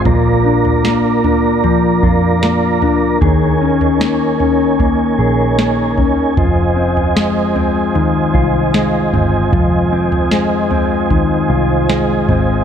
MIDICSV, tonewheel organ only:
0, 0, Header, 1, 2, 480
1, 0, Start_track
1, 0, Key_signature, -4, "minor"
1, 0, Tempo, 789474
1, 35, Time_signature, 4, 2, 24, 8
1, 7686, End_track
2, 0, Start_track
2, 0, Title_t, "Tonewheel organ"
2, 0, Program_c, 0, 16
2, 0, Note_on_c, 0, 65, 63
2, 37, Note_on_c, 0, 82, 70
2, 38, Note_on_c, 0, 70, 55
2, 38, Note_on_c, 0, 74, 61
2, 1933, Note_off_c, 0, 65, 0
2, 1937, Note_off_c, 0, 74, 0
2, 1937, Note_off_c, 0, 82, 0
2, 1952, Note_on_c, 0, 80, 68
2, 1955, Note_on_c, 0, 73, 56
2, 1956, Note_on_c, 0, 63, 63
2, 3852, Note_off_c, 0, 70, 0
2, 3856, Note_off_c, 0, 63, 0
2, 3856, Note_off_c, 0, 73, 0
2, 3876, Note_on_c, 0, 65, 59
2, 3877, Note_on_c, 0, 72, 59
2, 3877, Note_on_c, 0, 75, 59
2, 7686, Note_off_c, 0, 65, 0
2, 7686, Note_off_c, 0, 72, 0
2, 7686, Note_off_c, 0, 75, 0
2, 7686, Note_off_c, 0, 80, 0
2, 7686, End_track
0, 0, End_of_file